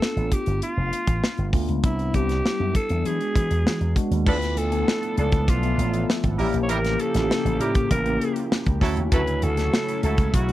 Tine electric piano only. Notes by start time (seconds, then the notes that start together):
Already playing: A3 B3 D4 F4
1.52 A3 B3 D4 F4
1.83 G3 B3 D4 E4
2.13 G3 B3 D4 E4
3.05 F#3 B3 D4 F#4
3.11 G#3
3.95 G#3 B3 D4 F#4
4.26 A3 B3 E4 F4
4.71 A3 B3 E4 G#5
5.63 A3 B3 F4 E5
6.38 A#3 C#4 E4 G4
7.14 A#3 C#4 E4 F4
7.22 G4
8.05 A#3 C#4 E4 A#4
8.80 A3 C#4 E4 F#4
9.56 A3 C#4 E4 F#4
10.48 A3 C#4 E4 F#4